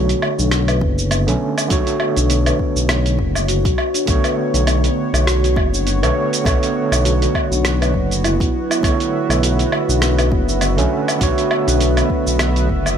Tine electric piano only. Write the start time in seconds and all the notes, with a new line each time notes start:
Already playing: D3 A3 C#5
1.27 D3 A3 C#4
1.68 D3 A3 C#5
4.06 D3 A3
4.10 C#5
6.02 D3 A3 C#5
6.44 D3 A3
6.48 C#5
8.81 D3 A3 C#5
10.77 D3 A3 C#4
11.19 D3 A3 C#5